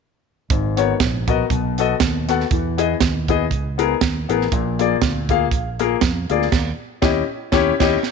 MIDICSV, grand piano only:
0, 0, Header, 1, 2, 480
1, 0, Start_track
1, 0, Key_signature, 5, "minor"
1, 0, Tempo, 501924
1, 477, Time_signature, 4, 2, 24, 8
1, 7760, End_track
2, 0, Start_track
2, 0, Title_t, "Grand piano"
2, 0, Program_c, 0, 0
2, 488, Note_on_c, 0, 44, 67
2, 736, Note_on_c, 0, 59, 78
2, 746, Note_on_c, 0, 66, 61
2, 749, Note_on_c, 0, 70, 66
2, 750, Note_on_c, 0, 73, 81
2, 877, Note_off_c, 0, 59, 0
2, 882, Note_off_c, 0, 66, 0
2, 884, Note_off_c, 0, 70, 0
2, 884, Note_off_c, 0, 73, 0
2, 1189, Note_off_c, 0, 44, 0
2, 1222, Note_on_c, 0, 59, 74
2, 1228, Note_on_c, 0, 66, 70
2, 1231, Note_on_c, 0, 70, 72
2, 1238, Note_on_c, 0, 75, 80
2, 1360, Note_off_c, 0, 59, 0
2, 1364, Note_off_c, 0, 66, 0
2, 1365, Note_off_c, 0, 70, 0
2, 1368, Note_off_c, 0, 75, 0
2, 1440, Note_on_c, 0, 47, 67
2, 1707, Note_on_c, 0, 59, 75
2, 1719, Note_on_c, 0, 66, 72
2, 1720, Note_on_c, 0, 69, 69
2, 1726, Note_on_c, 0, 75, 88
2, 1843, Note_off_c, 0, 59, 0
2, 1849, Note_off_c, 0, 66, 0
2, 1849, Note_off_c, 0, 69, 0
2, 1853, Note_off_c, 0, 75, 0
2, 2145, Note_off_c, 0, 47, 0
2, 2185, Note_on_c, 0, 59, 77
2, 2190, Note_on_c, 0, 66, 68
2, 2195, Note_on_c, 0, 69, 72
2, 2204, Note_on_c, 0, 78, 79
2, 2322, Note_off_c, 0, 59, 0
2, 2324, Note_off_c, 0, 66, 0
2, 2327, Note_off_c, 0, 69, 0
2, 2331, Note_off_c, 0, 78, 0
2, 2411, Note_on_c, 0, 52, 69
2, 2656, Note_on_c, 0, 59, 71
2, 2659, Note_on_c, 0, 64, 65
2, 2666, Note_on_c, 0, 68, 67
2, 2672, Note_on_c, 0, 75, 84
2, 2797, Note_off_c, 0, 59, 0
2, 2799, Note_off_c, 0, 64, 0
2, 2802, Note_off_c, 0, 68, 0
2, 2805, Note_off_c, 0, 75, 0
2, 3111, Note_off_c, 0, 52, 0
2, 3144, Note_on_c, 0, 59, 74
2, 3149, Note_on_c, 0, 64, 70
2, 3155, Note_on_c, 0, 68, 70
2, 3160, Note_on_c, 0, 75, 89
2, 3281, Note_off_c, 0, 59, 0
2, 3284, Note_off_c, 0, 64, 0
2, 3287, Note_off_c, 0, 68, 0
2, 3290, Note_off_c, 0, 75, 0
2, 3614, Note_on_c, 0, 59, 75
2, 3617, Note_on_c, 0, 64, 66
2, 3624, Note_on_c, 0, 68, 73
2, 3630, Note_on_c, 0, 70, 86
2, 3756, Note_off_c, 0, 59, 0
2, 3758, Note_off_c, 0, 64, 0
2, 3762, Note_off_c, 0, 68, 0
2, 3764, Note_off_c, 0, 70, 0
2, 4101, Note_on_c, 0, 59, 80
2, 4108, Note_on_c, 0, 64, 65
2, 4114, Note_on_c, 0, 68, 72
2, 4118, Note_on_c, 0, 70, 78
2, 4240, Note_off_c, 0, 59, 0
2, 4243, Note_off_c, 0, 64, 0
2, 4246, Note_off_c, 0, 68, 0
2, 4249, Note_off_c, 0, 70, 0
2, 4331, Note_on_c, 0, 46, 69
2, 4583, Note_on_c, 0, 58, 76
2, 4587, Note_on_c, 0, 65, 61
2, 4596, Note_on_c, 0, 68, 64
2, 4599, Note_on_c, 0, 74, 81
2, 4721, Note_off_c, 0, 58, 0
2, 4723, Note_off_c, 0, 65, 0
2, 4728, Note_off_c, 0, 68, 0
2, 4729, Note_off_c, 0, 74, 0
2, 5031, Note_off_c, 0, 46, 0
2, 5067, Note_on_c, 0, 58, 79
2, 5074, Note_on_c, 0, 68, 71
2, 5075, Note_on_c, 0, 65, 70
2, 5082, Note_on_c, 0, 77, 93
2, 5203, Note_off_c, 0, 58, 0
2, 5207, Note_off_c, 0, 65, 0
2, 5207, Note_off_c, 0, 68, 0
2, 5211, Note_off_c, 0, 77, 0
2, 5543, Note_on_c, 0, 58, 83
2, 5544, Note_on_c, 0, 65, 73
2, 5550, Note_on_c, 0, 70, 80
2, 5552, Note_on_c, 0, 68, 74
2, 5681, Note_off_c, 0, 58, 0
2, 5682, Note_off_c, 0, 65, 0
2, 5685, Note_off_c, 0, 70, 0
2, 5686, Note_off_c, 0, 68, 0
2, 6022, Note_on_c, 0, 58, 71
2, 6029, Note_on_c, 0, 65, 70
2, 6034, Note_on_c, 0, 68, 70
2, 6039, Note_on_c, 0, 74, 78
2, 6161, Note_off_c, 0, 58, 0
2, 6165, Note_off_c, 0, 65, 0
2, 6167, Note_off_c, 0, 68, 0
2, 6169, Note_off_c, 0, 74, 0
2, 6711, Note_on_c, 0, 61, 87
2, 6713, Note_on_c, 0, 64, 90
2, 6718, Note_on_c, 0, 67, 86
2, 6728, Note_on_c, 0, 75, 83
2, 6894, Note_off_c, 0, 61, 0
2, 6896, Note_off_c, 0, 64, 0
2, 6898, Note_off_c, 0, 67, 0
2, 6904, Note_off_c, 0, 75, 0
2, 7192, Note_on_c, 0, 61, 101
2, 7201, Note_on_c, 0, 64, 98
2, 7207, Note_on_c, 0, 67, 98
2, 7210, Note_on_c, 0, 73, 93
2, 7375, Note_off_c, 0, 61, 0
2, 7380, Note_off_c, 0, 64, 0
2, 7384, Note_off_c, 0, 67, 0
2, 7385, Note_off_c, 0, 73, 0
2, 7459, Note_on_c, 0, 61, 95
2, 7462, Note_on_c, 0, 64, 91
2, 7471, Note_on_c, 0, 67, 96
2, 7472, Note_on_c, 0, 75, 89
2, 7607, Note_off_c, 0, 61, 0
2, 7609, Note_off_c, 0, 64, 0
2, 7614, Note_off_c, 0, 67, 0
2, 7615, Note_off_c, 0, 75, 0
2, 7760, End_track
0, 0, End_of_file